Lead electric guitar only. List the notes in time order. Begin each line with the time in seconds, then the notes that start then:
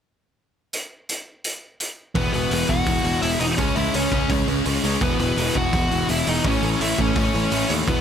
2.16 B3 B4
2.34 B3 B4
2.69 F#4 F#5
3.22 E4 E5
3.41 D#4 D#5
3.58 C#4 C#5
3.75 E4 E5
3.95 C#4 C#5
5.02 B3 B4
5.20 B3 B4
5.56 F#4 F#5
6.10 E4 E5
6.28 D#4 D#5
6.47 C#4 C#5
6.82 E4 E5
7.01 C#4 C#5
7.89 B3 B4